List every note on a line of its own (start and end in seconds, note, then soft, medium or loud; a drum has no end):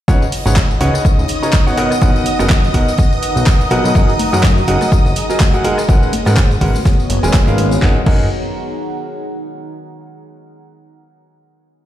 0.08 0.18 C#2 loud
0.08 0.22 C#3 loud
0.08 0.22 D#4 medium
0.08 6.67 D#4 medium
0.08 0.22 B4 medium
0.08 0.22 C#5 medium
0.08 7.83 D#5 medium
0.08 0.22 F#5 loud
0.08 7.83 D#6 medium
0.08 kick loud
0.08 closed hi-hat medium
0.08 tambourine medium
0.22 tambourine soft
0.32 open hi-hat loud
0.32 open hi-hat medium
0.46 0.76 G#1 medium
0.46 0.57 C#3 medium
0.46 0.57 D#4 medium
0.46 0.57 B4 medium
0.46 0.57 C#5 medium
0.46 0.57 F#5 medium
0.46 snare soft
0.46 tambourine medium
0.53 2.66 C#5 medium
0.53 kick loud
0.53 snare loud
0.53 clap loud
0.53 tambourine medium
0.71 tambourine soft
0.81 0.90 C#2 medium
0.81 1.01 C#3 medium
0.81 1.01 D#4 medium
0.81 1.01 B4 medium
0.81 1.01 C#5 medium
0.81 1.01 F#5 medium
0.81 snare medium
0.81 closed hi-hat medium
0.81 open hi-hat loud
0.85 6.67 F#5 medium
0.85 1.77 B5 medium
0.94 cross-stick medium
0.94 tambourine medium
1.05 kick loud
1.05 closed hi-hat medium
1.05 tambourine medium
1.18 1.26 C#2 medium
1.18 tambourine soft
1.28 closed hi-hat medium
1.28 open hi-hat loud
1.43 1.54 C#3 medium
1.43 1.54 D#4 medium
1.43 1.54 B4 medium
1.43 1.54 C#5 medium
1.43 1.54 A#5 medium
1.43 snare soft
1.43 tambourine medium
1.53 kick loud
1.53 snare loud
1.53 clap loud
1.53 closed hi-hat medium
1.53 tambourine medium
1.67 1.75 B2 medium
1.67 1.75 D#4 medium
1.67 1.75 B4 medium
1.67 1.75 C#5 medium
1.67 1.75 F#5 medium
1.67 closed hi-hat soft
1.67 tambourine soft
1.77 1.91 B2 loud
1.77 1.91 D#4 medium
1.77 1.91 A#4 medium
1.77 1.91 B4 medium
1.77 1.91 F#5 loud
1.77 closed hi-hat medium
1.77 open hi-hat loud
1.91 cross-stick medium
1.91 tambourine medium
2.01 2.11 B1 loud
2.01 2.22 B2 medium
2.01 2.22 D#4 medium
2.01 2.22 A#4 medium
2.01 2.22 B4 medium
2.01 2.22 F#5 loud
2.01 kick loud
2.01 closed hi-hat medium
2.01 tambourine medium
2.16 7.82 A#5 medium
2.16 tambourine soft
2.26 closed hi-hat medium
2.26 open hi-hat loud
2.39 2.69 F#1 medium
2.39 2.51 B2 medium
2.39 2.51 D#4 medium
2.39 2.51 A#4 medium
2.39 2.51 B4 medium
2.39 3.95 B4 medium
2.39 2.51 F#5 medium
2.39 cross-stick medium
2.39 snare medium
2.39 tambourine medium
2.50 kick loud
2.50 snare loud
2.50 clap loud
2.50 closed hi-hat medium
2.50 tambourine medium
2.64 tambourine soft
2.74 2.84 B1 medium
2.74 2.88 B2 medium
2.74 2.88 D#4 medium
2.74 2.88 A#4 medium
2.74 2.88 B4 medium
2.74 2.88 F#5 loud
2.74 kick medium
2.74 closed hi-hat medium
2.74 open hi-hat loud
2.88 snare soft
2.88 tambourine medium
2.98 kick loud
2.98 closed hi-hat medium
2.98 tambourine medium
3.13 tambourine soft
3.22 closed hi-hat medium
3.22 open hi-hat loud
3.36 3.44 B1 medium
3.36 tambourine medium
3.46 kick loud
3.46 snare loud
3.46 clap loud
3.46 closed hi-hat medium
3.46 tambourine medium
3.60 closed hi-hat soft
3.60 tambourine soft
3.71 3.81 B1 loud
3.71 3.93 F#3 medium
3.71 3.93 D#4 medium
3.71 3.93 A#4 medium
3.71 3.93 B4 medium
3.71 3.93 F#5 loud
3.71 snare soft
3.71 closed hi-hat medium
3.71 open hi-hat loud
3.84 3.92 B1 loud
3.84 tambourine medium
3.95 4.05 F#1 loud
3.95 4.09 F#3 loud
3.95 4.09 D#4 medium
3.95 4.09 G#4 medium
3.95 4.09 A#4 medium
3.95 4.09 F#5 loud
3.95 kick loud
3.95 closed hi-hat medium
3.95 tambourine medium
4.09 tambourine soft
4.19 open hi-hat loud
4.19 open hi-hat medium
4.19 high conga loud
4.33 4.63 F#2 medium
4.33 4.44 F#3 medium
4.33 4.44 D#4 medium
4.33 4.44 G#4 medium
4.33 6.67 G#4 medium
4.33 4.44 A#4 medium
4.33 4.44 F#5 medium
4.33 snare soft
4.33 tambourine medium
4.43 kick loud
4.43 snare loud
4.43 clap loud
4.43 closed hi-hat medium
4.43 tambourine medium
4.57 tambourine soft
4.68 4.77 F#1 medium
4.68 4.88 F#3 medium
4.68 4.88 D#4 medium
4.68 4.88 G#4 medium
4.68 4.88 A#4 medium
4.68 4.88 F#5 medium
4.68 snare soft
4.68 closed hi-hat medium
4.68 open hi-hat loud
4.81 cross-stick medium
4.81 tambourine medium
4.81 high conga medium
4.92 kick loud
4.92 closed hi-hat medium
4.92 tambourine medium
5.05 5.13 F#1 medium
5.05 tambourine soft
5.16 closed hi-hat medium
5.16 open hi-hat loud
5.30 5.41 F#3 medium
5.30 5.41 D#4 medium
5.30 5.41 G#4 medium
5.30 5.41 A#4 medium
5.30 5.41 A#5 medium
5.30 snare soft
5.30 tambourine medium
5.40 kick loud
5.40 snare loud
5.40 clap loud
5.40 closed hi-hat medium
5.40 tambourine medium
5.40 high conga medium
5.53 5.62 F#3 medium
5.53 5.62 D#4 medium
5.53 5.62 G#4 medium
5.53 5.62 A#4 medium
5.53 5.62 F#5 medium
5.53 closed hi-hat soft
5.53 tambourine soft
5.64 5.78 G#3 loud
5.64 5.78 D#4 medium
5.64 5.78 G#4 medium
5.64 5.78 A#4 medium
5.64 5.78 F#5 loud
5.64 closed hi-hat medium
5.64 open hi-hat loud
5.78 cross-stick medium
5.78 tambourine medium
5.89 5.98 G#1 loud
5.89 6.09 G#3 medium
5.89 7.82 B3 medium
5.89 6.09 C#4 medium
5.89 6.09 A#4 medium
5.89 6.09 B4 medium
5.89 6.09 F#5 loud
5.89 kick loud
5.89 closed hi-hat medium
5.89 tambourine medium
6.03 tambourine soft
6.07 7.82 C#5 loud
6.13 closed hi-hat medium
6.13 open hi-hat loud
6.13 high conga loud
6.23 6.57 G#2 medium
6.23 6.38 G#3 medium
6.23 6.38 C#4 medium
6.23 7.82 F#4 medium
6.23 6.38 A#4 medium
6.23 6.38 B4 medium
6.23 6.38 F#5 medium
6.23 cross-stick medium
6.23 snare medium
6.27 tambourine medium
6.37 kick loud
6.37 snare loud
6.37 clap loud
6.37 closed hi-hat loud
6.37 tambourine medium
6.51 tambourine soft
6.61 6.71 G#1 medium
6.61 6.75 G#3 medium
6.61 6.75 C#4 medium
6.61 6.75 A#4 medium
6.61 6.75 B4 medium
6.61 6.75 F#5 loud
6.61 kick medium
6.61 open hi-hat medium
6.61 open hi-hat loud
6.75 snare soft
6.75 tambourine medium
6.75 high conga medium
6.85 kick loud
6.85 snare loud
6.85 closed hi-hat medium
6.85 tambourine medium
6.99 tambourine soft
7.10 7.19 F#1 loud
7.10 closed hi-hat medium
7.10 open hi-hat loud
7.23 7.31 D#1 medium
7.23 7.44 G#3 medium
7.23 7.44 C#4 medium
7.23 7.44 A#4 medium
7.23 7.44 B4 medium
7.23 7.44 G#5 loud
7.23 tambourine medium
7.33 kick loud
7.33 snare loud
7.33 clap loud
7.33 closed hi-hat medium
7.33 tambourine medium
7.33 high conga loud
7.47 7.77 G#1 medium
7.47 7.80 G#3 medium
7.47 7.80 C#4 medium
7.47 7.80 A#4 medium
7.47 7.80 B4 medium
7.47 7.80 F5 medium
7.47 closed hi-hat soft
7.47 tambourine soft
7.58 snare medium
7.58 closed hi-hat medium
7.58 open hi-hat loud
7.71 tambourine medium
7.82 7.97 F#1 loud
7.82 7.97 D#4 medium
7.82 9.72 D#4 medium
7.82 7.97 G#4 medium
7.82 7.97 A#4 medium
7.82 7.97 F#5 medium
7.82 kick loud
7.82 snare medium
7.90 9.72 G#4 medium
7.98 9.72 F#5 medium
8.04 8.29 F#1 loud
8.04 8.25 D#4 medium
8.04 8.25 G#4 medium
8.04 8.25 A#4 medium
8.04 8.25 F#5 loud
8.04 9.72 A#5 medium
8.04 kick loud
8.04 crash medium